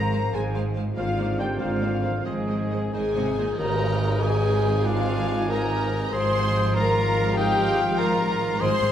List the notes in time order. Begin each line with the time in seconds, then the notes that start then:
Already playing: G#1 G#2 F3 G#3 C4 G#4 A#4 C5 F5 A#5 F6
0.04 F5
0.12 G#3 C5 F5
0.24 G#5
0.34 G#1 G#2 G#3 G#4 C5 F5 G#5 F6
0.45 C5
0.54 G#3 C5 F5
0.65 G#4
0.75 G#3 C5 F5
0.86 C4
0.96 G#1 G#2 D3 A#3 C4 F4 C5 D5 F5
1.07 C4
1.17 A#3 A#4 C5 D5
1.28 D5
1.38 A#3 G4 C5 D5 G5
1.49 A#5
1.59 G#1 G#2 A#3 F4 C5 D5 F5 D6
1.71 C5
1.81 A#3 C5 D5
1.92 A#4
2.03 F3 A#3 C5 D5
2.15 C4
2.25 G#1 G#2 D#3 G#3 G#4 C5 D#5
2.37 C4
2.48 G#3 G#4 C5 D#5
2.71 G#3 C5 D#5
2.82 G#5
2.93 G#1 G#2 G#3 D#4 G#4 C5 D#5 G#5 D#6
3.05 C5
3.16 C3 G#3 C5 D#5
3.27 G#4
3.37 A#2 D#3 G#3 C5 D#5
3.48 C4
3.58 G#1 G#2 D#3 C4 D#4 A#4 G#5 A#5, tam-tam
3.81 D#3
4.02 G#4
4.22 D#4 G#4 C5 G#5
4.45 A#4
4.84 G#2 D4 F4 F5
5.07 D#3
5.29 G#4
5.49 D#4 A#4 C5 A#5
5.93 G#4
6.12 G#1 G#2 F3 F4 G#4 C5 F5 C6
6.34 F3
6.55 F4
6.75 F4 A#4 D5 A#5
6.96 F5
7.17 F4
7.36 G#2 D#4 G4 G5
7.58 F3
7.97 F4 A#4 D5 A#5
8.20 F5
8.41 F4
8.60 G#1 G#2 F3 C4 G#4 C5 F5 C6
8.82 G#1 G#2 G#3